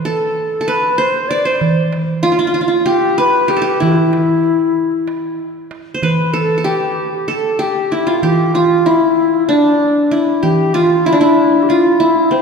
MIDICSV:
0, 0, Header, 1, 4, 480
1, 0, Start_track
1, 0, Tempo, 628931
1, 1234, Time_signature, 7, 3, 24, 8
1, 9477, End_track
2, 0, Start_track
2, 0, Title_t, "Ney"
2, 0, Program_c, 0, 77
2, 34, Note_on_c, 0, 69, 66
2, 515, Note_on_c, 0, 71, 74
2, 526, Note_off_c, 0, 69, 0
2, 747, Note_on_c, 0, 72, 90
2, 759, Note_off_c, 0, 71, 0
2, 982, Note_on_c, 0, 74, 91
2, 993, Note_off_c, 0, 72, 0
2, 1111, Note_on_c, 0, 72, 80
2, 1123, Note_off_c, 0, 74, 0
2, 1353, Note_off_c, 0, 72, 0
2, 1712, Note_on_c, 0, 65, 74
2, 2162, Note_off_c, 0, 65, 0
2, 2183, Note_on_c, 0, 67, 83
2, 2429, Note_on_c, 0, 71, 84
2, 2440, Note_off_c, 0, 67, 0
2, 2675, Note_on_c, 0, 67, 76
2, 2687, Note_off_c, 0, 71, 0
2, 2779, Note_off_c, 0, 67, 0
2, 2783, Note_on_c, 0, 67, 78
2, 2912, Note_on_c, 0, 64, 73
2, 2923, Note_off_c, 0, 67, 0
2, 4113, Note_off_c, 0, 64, 0
2, 4597, Note_on_c, 0, 71, 67
2, 4833, Note_on_c, 0, 69, 70
2, 4844, Note_off_c, 0, 71, 0
2, 5074, Note_on_c, 0, 67, 64
2, 5086, Note_off_c, 0, 69, 0
2, 5434, Note_off_c, 0, 67, 0
2, 5438, Note_on_c, 0, 67, 67
2, 5563, Note_on_c, 0, 69, 67
2, 5575, Note_off_c, 0, 67, 0
2, 5809, Note_on_c, 0, 67, 71
2, 5820, Note_off_c, 0, 69, 0
2, 6048, Note_on_c, 0, 64, 68
2, 6059, Note_off_c, 0, 67, 0
2, 6169, Note_on_c, 0, 65, 70
2, 6181, Note_off_c, 0, 64, 0
2, 6281, Note_off_c, 0, 65, 0
2, 6290, Note_on_c, 0, 67, 69
2, 6505, Note_off_c, 0, 67, 0
2, 6527, Note_on_c, 0, 65, 68
2, 6761, Note_on_c, 0, 64, 72
2, 6773, Note_off_c, 0, 65, 0
2, 7234, Note_off_c, 0, 64, 0
2, 7239, Note_on_c, 0, 62, 74
2, 7720, Note_off_c, 0, 62, 0
2, 7952, Note_on_c, 0, 67, 68
2, 8194, Note_on_c, 0, 65, 76
2, 8206, Note_off_c, 0, 67, 0
2, 8434, Note_on_c, 0, 64, 69
2, 8445, Note_off_c, 0, 65, 0
2, 8461, Note_on_c, 0, 62, 58
2, 8473, Note_off_c, 0, 64, 0
2, 8498, Note_on_c, 0, 64, 68
2, 8509, Note_off_c, 0, 62, 0
2, 8539, Note_off_c, 0, 64, 0
2, 8543, Note_on_c, 0, 64, 84
2, 8870, Note_on_c, 0, 67, 53
2, 8881, Note_off_c, 0, 64, 0
2, 8919, Note_on_c, 0, 65, 80
2, 8931, Note_off_c, 0, 67, 0
2, 9158, Note_on_c, 0, 64, 76
2, 9170, Note_off_c, 0, 65, 0
2, 9399, Note_on_c, 0, 72, 87
2, 9410, Note_off_c, 0, 64, 0
2, 9477, Note_off_c, 0, 72, 0
2, 9477, End_track
3, 0, Start_track
3, 0, Title_t, "Qanun"
3, 0, Program_c, 1, 107
3, 0, Note_on_c, 1, 71, 75
3, 39, Note_on_c, 1, 69, 76
3, 266, Note_off_c, 1, 71, 0
3, 461, Note_off_c, 1, 69, 0
3, 464, Note_on_c, 1, 69, 63
3, 517, Note_on_c, 1, 71, 84
3, 748, Note_on_c, 1, 72, 86
3, 793, Note_off_c, 1, 71, 0
3, 996, Note_on_c, 1, 74, 89
3, 1106, Note_off_c, 1, 72, 0
3, 1109, Note_on_c, 1, 72, 80
3, 1358, Note_off_c, 1, 69, 0
3, 1700, Note_on_c, 1, 65, 93
3, 1749, Note_off_c, 1, 74, 0
3, 1766, Note_off_c, 1, 65, 0
3, 1769, Note_on_c, 1, 65, 65
3, 1820, Note_off_c, 1, 65, 0
3, 1823, Note_on_c, 1, 65, 74
3, 1883, Note_off_c, 1, 65, 0
3, 1886, Note_on_c, 1, 65, 59
3, 1917, Note_off_c, 1, 72, 0
3, 1936, Note_off_c, 1, 65, 0
3, 1939, Note_on_c, 1, 65, 70
3, 1989, Note_off_c, 1, 65, 0
3, 1992, Note_on_c, 1, 65, 58
3, 2041, Note_off_c, 1, 65, 0
3, 2045, Note_on_c, 1, 65, 63
3, 2180, Note_on_c, 1, 67, 90
3, 2426, Note_on_c, 1, 71, 99
3, 2653, Note_off_c, 1, 67, 0
3, 2657, Note_on_c, 1, 67, 81
3, 2721, Note_on_c, 1, 69, 66
3, 2757, Note_off_c, 1, 67, 0
3, 2760, Note_on_c, 1, 67, 78
3, 2902, Note_on_c, 1, 64, 75
3, 2948, Note_off_c, 1, 65, 0
3, 3259, Note_off_c, 1, 71, 0
3, 3616, Note_off_c, 1, 69, 0
3, 3720, Note_off_c, 1, 67, 0
3, 4077, Note_off_c, 1, 64, 0
3, 4537, Note_on_c, 1, 72, 65
3, 4602, Note_on_c, 1, 71, 76
3, 4648, Note_off_c, 1, 72, 0
3, 4834, Note_on_c, 1, 69, 80
3, 5016, Note_off_c, 1, 69, 0
3, 5019, Note_on_c, 1, 69, 58
3, 5071, Note_on_c, 1, 67, 83
3, 5436, Note_off_c, 1, 71, 0
3, 5552, Note_off_c, 1, 69, 0
3, 5555, Note_on_c, 1, 69, 76
3, 5789, Note_off_c, 1, 67, 0
3, 5792, Note_on_c, 1, 67, 78
3, 6043, Note_on_c, 1, 64, 69
3, 6157, Note_on_c, 1, 65, 70
3, 6203, Note_off_c, 1, 64, 0
3, 6279, Note_off_c, 1, 67, 0
3, 6282, Note_on_c, 1, 67, 76
3, 6450, Note_off_c, 1, 69, 0
3, 6522, Note_off_c, 1, 65, 0
3, 6525, Note_on_c, 1, 65, 79
3, 6762, Note_on_c, 1, 64, 79
3, 6808, Note_off_c, 1, 65, 0
3, 7240, Note_on_c, 1, 62, 79
3, 7242, Note_off_c, 1, 67, 0
3, 7716, Note_off_c, 1, 64, 0
3, 7719, Note_on_c, 1, 64, 69
3, 7958, Note_on_c, 1, 67, 77
3, 8198, Note_on_c, 1, 65, 88
3, 8244, Note_off_c, 1, 64, 0
3, 8381, Note_off_c, 1, 62, 0
3, 8443, Note_on_c, 1, 64, 80
3, 8488, Note_off_c, 1, 65, 0
3, 8490, Note_on_c, 1, 62, 72
3, 8550, Note_off_c, 1, 64, 0
3, 8553, Note_on_c, 1, 64, 88
3, 8918, Note_off_c, 1, 67, 0
3, 8927, Note_on_c, 1, 65, 80
3, 8973, Note_off_c, 1, 64, 0
3, 9158, Note_on_c, 1, 64, 82
3, 9203, Note_off_c, 1, 65, 0
3, 9394, Note_on_c, 1, 60, 67
3, 9477, Note_off_c, 1, 60, 0
3, 9477, Note_off_c, 1, 62, 0
3, 9477, Note_off_c, 1, 64, 0
3, 9477, End_track
4, 0, Start_track
4, 0, Title_t, "Darbuka"
4, 401, Note_on_c, 9, 62, 25
4, 477, Note_off_c, 9, 62, 0
4, 521, Note_on_c, 9, 63, 59
4, 598, Note_off_c, 9, 63, 0
4, 995, Note_on_c, 9, 63, 59
4, 1072, Note_off_c, 9, 63, 0
4, 1230, Note_on_c, 9, 64, 90
4, 1306, Note_off_c, 9, 64, 0
4, 1469, Note_on_c, 9, 63, 67
4, 1546, Note_off_c, 9, 63, 0
4, 2075, Note_on_c, 9, 62, 26
4, 2152, Note_off_c, 9, 62, 0
4, 2191, Note_on_c, 9, 63, 64
4, 2268, Note_off_c, 9, 63, 0
4, 2668, Note_on_c, 9, 63, 65
4, 2745, Note_off_c, 9, 63, 0
4, 2917, Note_on_c, 9, 64, 99
4, 2993, Note_off_c, 9, 64, 0
4, 3152, Note_on_c, 9, 63, 74
4, 3228, Note_off_c, 9, 63, 0
4, 3751, Note_on_c, 9, 62, 29
4, 3827, Note_off_c, 9, 62, 0
4, 3873, Note_on_c, 9, 63, 66
4, 3950, Note_off_c, 9, 63, 0
4, 4115, Note_on_c, 9, 62, 25
4, 4191, Note_off_c, 9, 62, 0
4, 4358, Note_on_c, 9, 63, 72
4, 4434, Note_off_c, 9, 63, 0
4, 4597, Note_on_c, 9, 64, 81
4, 4674, Note_off_c, 9, 64, 0
4, 4835, Note_on_c, 9, 63, 64
4, 4911, Note_off_c, 9, 63, 0
4, 5086, Note_on_c, 9, 62, 26
4, 5162, Note_off_c, 9, 62, 0
4, 5440, Note_on_c, 9, 62, 25
4, 5516, Note_off_c, 9, 62, 0
4, 5557, Note_on_c, 9, 63, 58
4, 5633, Note_off_c, 9, 63, 0
4, 6041, Note_on_c, 9, 63, 60
4, 6118, Note_off_c, 9, 63, 0
4, 6278, Note_on_c, 9, 64, 84
4, 6354, Note_off_c, 9, 64, 0
4, 6520, Note_on_c, 9, 63, 67
4, 6597, Note_off_c, 9, 63, 0
4, 7119, Note_on_c, 9, 62, 24
4, 7195, Note_off_c, 9, 62, 0
4, 7239, Note_on_c, 9, 63, 59
4, 7315, Note_off_c, 9, 63, 0
4, 7719, Note_on_c, 9, 63, 60
4, 7795, Note_off_c, 9, 63, 0
4, 7959, Note_on_c, 9, 64, 86
4, 8036, Note_off_c, 9, 64, 0
4, 8204, Note_on_c, 9, 63, 68
4, 8280, Note_off_c, 9, 63, 0
4, 8448, Note_on_c, 9, 62, 24
4, 8525, Note_off_c, 9, 62, 0
4, 8805, Note_on_c, 9, 62, 26
4, 8882, Note_off_c, 9, 62, 0
4, 8922, Note_on_c, 9, 63, 61
4, 8998, Note_off_c, 9, 63, 0
4, 9405, Note_on_c, 9, 63, 62
4, 9477, Note_off_c, 9, 63, 0
4, 9477, End_track
0, 0, End_of_file